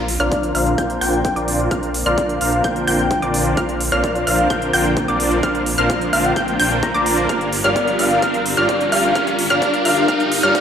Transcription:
Already playing: A#1 D3 A#3 C4, riser
0.08 open hi-hat
0.20 A#1 D4 F4 A#4 C5 D5 F5 F6
0.32 kick, closed hi-hat
0.43 closed hi-hat
0.55 A#1 D4 F4 A#4 C5 F5 F6, open hi-hat
0.67 closed hi-hat
0.78 A#1 D4 F4 A#4 C5 G5 G6, kick, closed hi-hat
0.90 closed hi-hat
1.01 A#1 D4 F4 A#4 C5 G5 G6, open hi-hat
1.13 G5, closed hi-hat
1.25 G5, kick, closed hi-hat
1.36 A#1 D4 F4 A#4 C5 D5 D6, closed hi-hat
1.48 open hi-hat
1.60 closed hi-hat
1.71 A#1 D4 F4 A#4 C5 F5 F6, kick, closed hi-hat
1.83 closed hi-hat
1.94 open hi-hat
2.06 A#1 D4 F4 A#4 C5 D5 F5 F6
2.18 kick, closed hi-hat
2.29 closed hi-hat
2.41 A#1 D4 F4 A#4 C5 F5 F6, open hi-hat
2.53 F5, closed hi-hat
2.64 A#1 D4 F4 A#4 C5 G5 G6, kick, closed hi-hat
2.76 closed hi-hat
2.87 A#1 D4 F4 A#4 C5 G5 G6, open hi-hat
2.99 closed hi-hat
3.11 kick, closed hi-hat
3.22 A#1 D4 F4 A#4 C5 D5 D6, closed hi-hat
3.34 open hi-hat
3.46 closed hi-hat
3.57 A#1 D4 F4 A#4 C5 F5 F6, kick, closed hi-hat
3.69 closed hi-hat
3.81 open hi-hat
3.92 A#1 D4 F4 A#4 C5 D5 F5 F6, closed hi-hat
4.04 kick, closed hi-hat
4.15 closed hi-hat
4.27 A#1 D4 F4 A#4 C5 F5 F6, open hi-hat
4.39 closed hi-hat
4.50 A#1 D4 F4 A#4 C5 G5 G6, kick, closed hi-hat
4.62 closed hi-hat
4.73 A#1 D4 F4 A#4 C5 G5 G6, open hi-hat
4.85 closed hi-hat
4.97 kick, closed hi-hat
5.08 A#1 D4 F4 A#4 C5 D5 D6, closed hi-hat
5.20 open hi-hat
5.32 closed hi-hat
5.43 A#1 D4 F4 A#4 C5 F5 F6, kick, closed hi-hat
5.55 closed hi-hat
5.66 open hi-hat
5.78 A#1 D4 F4 A#4 C5 F5 F6, closed hi-hat
5.90 kick, closed hi-hat
6.01 closed hi-hat
6.13 A#1 D4 F4 A#4 C5 F5 F6, open hi-hat
6.25 G5, closed hi-hat
6.36 A#1 D4 F4 A#4 C5 G5 G6, kick, closed hi-hat
6.48 closed hi-hat
6.60 A#1 D4 F4 A#4 C5 G5 G6, open hi-hat
6.71 closed hi-hat
6.83 A#5, kick, closed hi-hat
6.94 A#1 D4 F4 A#4 C5 D5 A#5 D6, closed hi-hat
7.06 A#5, open hi-hat
7.18 closed hi-hat
7.29 G1 G3 D4 F4 G4 A#4 F5 F6, kick, closed hi-hat
7.41 closed hi-hat
7.53 open hi-hat
7.64 G1 D4 F4 G4 A#4 D5 F5 F6, closed hi-hat
7.76 kick, closed hi-hat
7.87 closed hi-hat
7.99 G1 D4 F4 G4 A#4 F5 F6, open hi-hat
8.11 closed hi-hat
8.22 G1 D4 F4 G4 A#4 F5 F6, kick, closed hi-hat
8.34 closed hi-hat
8.46 open hi-hat
8.57 G1 D4 F4 G4 A#4 D5 F5 F6, closed hi-hat
8.69 kick, closed hi-hat
8.81 closed hi-hat
8.92 G1 D4 F4 G4 A#4 F5 F6, open hi-hat
9.04 closed hi-hat
9.15 G1 D4 F4 G4 A#4 F5 F6, kick, closed hi-hat
9.27 closed hi-hat
9.39 open hi-hat
9.50 G1 D4 F4 G4 A#4 D5 F5 F6, closed hi-hat
9.62 kick, closed hi-hat
9.74 closed hi-hat
9.85 G1 D4 F4 G4 A#4 F5 F6, open hi-hat
9.97 closed hi-hat
10.08 G1 D4 F4 G4 A#4 F5 F6, kick, closed hi-hat
10.20 closed hi-hat
10.32 open hi-hat
10.43 G2 D4 F4 G4 A#4 D5 F5 F6
10.55 kick, closed hi-hat

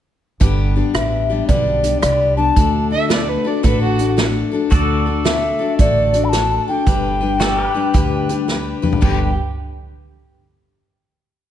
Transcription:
0.40 G1 G2 D3 G3 B3 D4 G4, kick, closed hi-hat
0.76 G3 B3 D4 G4
0.94 A1 G3 B3 D4 G4 E5, cross-stick, closed hi-hat
1.30 G3 B3 D4 G4
1.47 B1 G2 D3 G3 B3 D4 G4 D5, kick, closed hi-hat
1.83 G3 B3 D4 G4, closed hi-hat
2.01 C2 G3 B3 D4 G4 D5, cross-stick, closed hi-hat
2.37 G3 B3 D4 G4 A5
2.56 D2 D3 A3 D4 F#4 A4, kick, closed hi-hat
2.90 D4 F#4 A4 E5
3.09 A3 D4 F#4 A4 D5, snare, closed hi-hat
3.29 B4
3.44 D4 F#4 A4 D5
3.63 A1 D3 A3 D4 F#4 A4 B4, kick, closed hi-hat
3.82 F#4
3.98 D4 F#4 A4, closed hi-hat
4.17 A3 D4 F#4 A4, snare, closed hi-hat
4.52 D4 F#4 A4
4.70 D2 D3 A3 D4 F#4 A4 D5, kick, closed hi-hat
5.06 D4 F#4 A4
5.24 A3 D4 F#4 A4 E5, snare, closed hi-hat
5.59 D4 F#4 A4
5.79 A1 D3 A3 D4 F#4 A4 D5, kick, closed hi-hat
6.13 D4 F#4 A4, closed hi-hat
6.24 B5
6.29 A3 A5
6.33 D4 F#4 A4, snare, closed hi-hat
6.68 D4 F#4 A4 G5
6.86 G1 G2 D3 G3 D4 G4 B4, kick, closed hi-hat
7.21 G3 D4 G4 B4
7.39 G3 D4 F#4 G4 A4 B4 D5, snare, closed hi-hat
7.60 G4
7.66 B4
7.74 G3 D4 G4 B4
7.94 D2 G2 D3 G3 D4 G4 B4, kick, closed hi-hat
8.29 G3 D4 G4 B4, closed hi-hat
8.48 G3 D4 G4 B4, snare
8.82 G3 D4 G4 B4, mid tom
8.92 floor tom
9.01 G1 G2 D3 G3 D4 G4 B4 G5, kick, floor tom, crash

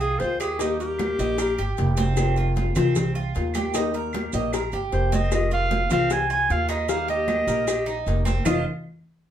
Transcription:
Already playing: C2
0.00 F4 G#4, high conga, maracas
0.19 D#2 D#3 G#3 C4 F4 C5, cowbell, high conga, maracas
0.40 G4 G#4, cowbell, claves, maracas
0.59 D#3 G3 A#3 D#4 G4, cowbell, high conga, maracas
0.80 G4 A#4, high conga, maracas
0.99 G3 A#3 D#4 G4, cowbell, high conga, claves, maracas
1.19 A#1 G3 A#3 D#4 G4 D#5, high conga, maracas
1.38 A#4, muted nylon-string guitar stroke, cowbell, high conga, claves, maracas
1.58 G1 G4, high conga, maracas
1.77 F1 G3 A#3 D#4 G4, cowbell, high conga, maracas
1.97 C4, cowbell, high conga, maracas
2.17 C3 D#3 G#3 C4 F4, cowbell, high conga, claves, maracas
2.36 F4, high conga, maracas
2.56 D#3 G#3 C4 F4, cowbell, high conga, maracas
2.75 C2 D#3 G#3 C4 F4, cowbell, high conga, low conga, claves, maracas
2.95 muted nylon-string guitar stroke, cowbell, high conga, low conga, maracas
3.15 F4, high conga, maracas
3.35 D#2 D#3 G#3 C4 F4, cowbell, high conga, maracas
3.54 G4, cowbell, high conga, claves, maracas
3.74 D#3 G3 A#3 D#4 G4, cowbell, high conga, maracas
3.94 A#4, high conga, maracas
4.13 G3 A#3 D#4 G4, cowbell, high conga, claves, maracas
4.32 A#1 G3 A#3 D#4 G4 D#5, high conga, maracas
4.53 A#4, muted nylon-string guitar stroke, cowbell, high conga, claves, maracas
4.72 G1 G4, high conga, maracas
4.92 F1 G3 A#3 D#4 G4 C5, cowbell, high conga, maracas
5.12 C4 D#5, cowbell, high conga, maracas
5.32 C3 D#3 G#3 C4 F4 D#5, cowbell, high conga, claves, maracas
5.51 F4 F5, high conga, maracas
5.71 D#3 G#3 C4 F4, cowbell, high conga, maracas
5.90 C2 D#3 G#3 C4 F4 F5, cowbell, high conga, low conga, claves, maracas
6.10 G#5, muted nylon-string guitar stroke, cowbell, high conga, maracas
6.30 F4 G#5, high conga, maracas
6.49 D#2 D#3 G#3 C4 F4 F5, cowbell, high conga, maracas
6.68 D#4 D#5, cowbell, claves, maracas
6.88 D#3 G3 A#3 D#4 G4 F5, cowbell, high conga, maracas
7.08 G4 D#5, high conga, maracas
7.28 G3 A#3 D#4 G4, cowbell, high conga, claves, maracas
7.47 A#1 G3 A#3 D#4 G4 A#4, maracas
7.67 G4, muted nylon-string guitar stroke, cowbell, high conga, claves, maracas
7.86 D#4, high conga, maracas
8.06 F1 G3 A#3 D#4 G4, cowbell, high conga, maracas
8.25 C4, cowbell, high conga, maracas
8.44 F1 F2 C3 D#3 G#3 C4 F4 C5 D#5 F5, low bongo, low conga, claves, maracas

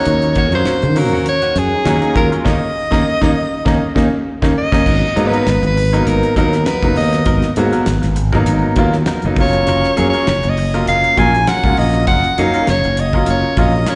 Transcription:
Already playing: F#3 A#3 C#4 D#4 C#5
0.06 D#2, closed hi-hat
0.22 muted clean electric guitar stroke, closed hi-hat
0.35 D#3 A#3 C#4 F#4 C#5, kick, closed hi-hat
0.52 F#2 F#3 A#3 C#4 F#4 C5, muted clean electric guitar stroke, closed hi-hat
0.65 muted fretless electric bass stroke, snare, closed hi-hat
0.82 D#3 C#4 F4, muted clean electric guitar stroke, closed hi-hat
0.95 F#3 A#3 C#4 F#4 A#4, muted clean electric guitar stroke, open hi-hat
1.13 D#2 A#3 C#4 F#4
1.26 C#4 F#4 C#5, muted clean electric guitar stroke, closed hi-hat
1.42 D#3 A#3 C#4 F#4, closed hi-hat
1.56 F#2 C#4 F#4 G#4, muted clean electric guitar stroke, closed hi-hat
1.72 C#4 D#4
1.84 D#2 D#3 F#3 A#3 C#4 D#4 F#4, snare, closed hi-hat
2.02 muted clean electric guitar stroke, closed hi-hat
2.15 D#2 F#3 G#3 C#4 F4 A#4, muted clean electric guitar stroke, kick, closed hi-hat
2.32 G#3 C#4 F4, closed hi-hat
2.45 D#2 A#3 C#4 D#4 D#5, kick, snare
2.91 D#2 A#3 C#4 D#4, kick, snare
3.21 D#2 A#3 C#4 D#4, kick, snare
3.65 D#2 A#3 C#4 D#4, kick, snare
3.95 D#2 A#3 C#4 D#4, kick, snare
4.42 D#2 A#3 C#4 D#4, kick, snare
4.58 D#5
4.72 D#2 A#3 C#4 D#4, kick, snare
4.86 G#1 F#3 B3 D#4 A#4, kick, crash
5.16 G#2 F#3 A#3 B3 D#4, muted clean electric guitar stroke, closed hi-hat
5.27 B4
5.32 B3 D#4 A#4, closed hi-hat
5.46 G#1 B3 D#4, muted clean electric guitar stroke, snare, closed hi-hat
5.62 G#1 B4, muted clean electric guitar stroke, closed hi-hat
5.77 muted clean electric guitar stroke, open hi-hat
5.93 F#3 A#3 B3 D#4 A#4, closed hi-hat
6.06 G#1 A#4, closed hi-hat
6.23 muted clean electric guitar stroke, closed hi-hat
6.36 D#2 F#3 A#3 B3 D#4 A#4, kick, closed hi-hat
6.53 B3 D#4, muted clean electric guitar stroke, snare, closed hi-hat
6.66 F#3 B3 D#4 A#4 B4, snare, closed hi-hat
6.83 F#1 F#3 A#3 B3 D#4, kick, snare, closed hi-hat
6.96 D#2 D#5, muted clean electric guitar stroke, open hi-hat
7.13 muted clean electric guitar stroke, snare, closed hi-hat
7.26 G#1 F#3 B3 D#4 A#4, kick, closed hi-hat
7.42 snare, closed hi-hat
7.56 G#2 F#3 A#3 B3 F#4, muted clean electric guitar stroke, closed hi-hat
7.72 B3 D#4 A#4, closed hi-hat
7.86 G#1 B3 F#4, muted clean electric guitar stroke, snare, closed hi-hat
8.02 G#1, muted clean electric guitar stroke, snare, closed hi-hat
8.16 muted clean electric guitar stroke, closed hi-hat
8.32 F#3 A#3 B3 D#4 A#4, kick, snare
8.46 G#1, closed hi-hat
8.63 muted clean electric guitar stroke
8.76 D#2 F#3 A#3 B3 D#4 F4 A#4, kick, closed hi-hat
8.92 B3 F4, muted clean electric guitar stroke, snare
9.06 F#3 B3 D#4 A#4, snare, closed hi-hat
9.22 F#1 F#3 A#3 B3 D#4, closed hi-hat
9.36 F#1 F#3 A#3 C#4 F4, muted clean electric guitar stroke, kick, open hi-hat
9.41 C#5
9.53 muted clean electric guitar stroke, closed hi-hat
9.67 F#1 F#3 C#4 F4 A#4, closed hi-hat
9.83 snare
9.96 F#2 F#3 A#3 C#4 G#4, muted clean electric guitar stroke, closed hi-hat
10.09 C#5, closed hi-hat
10.14 C#4 F4 A#4
10.27 F#1 C#4 F4, muted clean electric guitar stroke, snare, closed hi-hat
10.43 F#1, muted clean electric guitar stroke, closed hi-hat
10.49 D#5
10.57 muted clean electric guitar stroke, open hi-hat
10.74 F#3 A#3 C#4 F4 A#4, closed hi-hat
10.87 F#1 F5, closed hi-hat
11.04 muted clean electric guitar stroke, closed hi-hat
11.17 A#1 F#3 A#3 C#4 F4 A#4 G#5, kick, closed hi-hat
11.34 C#4 D#4, muted clean electric guitar stroke, closed hi-hat
11.47 F#3 C#4 F4 A#4 F#5, snare, closed hi-hat
11.63 C#2 F#3 A#3 C#4 F4, kick, closed hi-hat
11.77 A#1 D#5, muted clean electric guitar stroke, open hi-hat
11.94 muted clean electric guitar stroke, closed hi-hat
12.07 F#1 F#3 C#4 F4 A#4 F#5, kick, closed hi-hat
12.24 closed hi-hat
12.38 F#2 F#3 A#3 C#4 D#4 F5, muted clean electric guitar stroke, closed hi-hat
12.54 C#4 F4 A#4, closed hi-hat
12.67 F#1 C#4 G#4 C#5, muted clean electric guitar stroke, snare, closed hi-hat
12.84 F#1, muted clean electric guitar stroke, closed hi-hat
12.97 D#5, muted clean electric guitar stroke, closed hi-hat
13.13 F#3 A#3 C#4 F4 A#4, kick
13.26 F#1 C#5, closed hi-hat
13.44 muted clean electric guitar stroke
13.57 A#1 F#3 A#3 C#4 F4 A#4 D#5, kick, closed hi-hat
13.74 C#4 F4, muted clean electric guitar stroke
13.86 F#3 C#4 F4 A#4 C#5, snare, closed hi-hat

